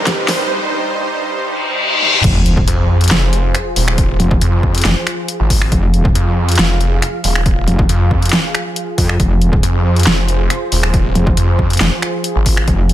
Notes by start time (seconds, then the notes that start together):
Already playing: G2 G3 D#4 C5, riser
0.07 G4, kick, snare, closed hi-hat
0.28 C5, snare, open hi-hat
1.37 reverse cymbal
2.02 high tom
2.14 mid tom
2.24 F1 F3 F4 G#4 C5, kick, closed hi-hat, crash, sub drop
2.46 closed hi-hat
2.57 kick
2.68 F2, closed hi-hat
3.01 closed hi-hat
3.04 closed hi-hat
3.08 F1, snare, closed hi-hat
3.11 closed hi-hat
3.33 closed hi-hat
3.55 finger snap, closed hi-hat
3.76 D#1, open hi-hat
3.88 finger snap
3.98 kick, closed hi-hat
4.20 F1, closed hi-hat
4.31 kick
4.41 F2, closed hi-hat
4.63 kick
4.75 closed hi-hat
4.78 closed hi-hat
4.81 snare, closed hi-hat
4.85 F1, closed hi-hat
5.07 finger snap, closed hi-hat
5.28 closed hi-hat
5.40 G#1
5.50 kick, open hi-hat
5.62 finger snap
5.72 F1 F5, kick, closed hi-hat
5.94 closed hi-hat
6.05 kick
6.15 F2, closed hi-hat
6.49 closed hi-hat
6.52 closed hi-hat
6.55 F1, snare, closed hi-hat
6.59 closed hi-hat
6.81 closed hi-hat
7.02 finger snap, closed hi-hat
7.24 D#1, open hi-hat
7.35 finger snap
7.46 kick, closed hi-hat
7.68 F1, closed hi-hat
7.79 kick
7.89 F2, closed hi-hat
8.11 kick
8.22 closed hi-hat
8.26 closed hi-hat
8.29 snare, closed hi-hat
8.33 closed hi-hat
8.55 finger snap, closed hi-hat
8.76 closed hi-hat
8.98 F2, kick, open hi-hat
9.09 finger snap
9.20 F1 C5, kick, closed hi-hat
9.41 closed hi-hat
9.53 kick
9.63 F2, closed hi-hat
9.96 closed hi-hat
9.99 closed hi-hat
10.03 F1, snare, closed hi-hat
10.07 closed hi-hat
10.29 closed hi-hat
10.50 finger snap, closed hi-hat
10.72 D#1, open hi-hat
10.83 finger snap
10.94 kick, closed hi-hat
11.15 F1, closed hi-hat
11.27 kick
11.37 F2, closed hi-hat
11.59 kick
11.70 closed hi-hat
11.73 closed hi-hat
11.77 snare, closed hi-hat
11.81 F1, closed hi-hat
12.02 finger snap, closed hi-hat
12.24 closed hi-hat
12.36 G#1
12.46 kick, open hi-hat
12.57 finger snap
12.68 F1 D#5, kick, closed hi-hat
12.89 closed hi-hat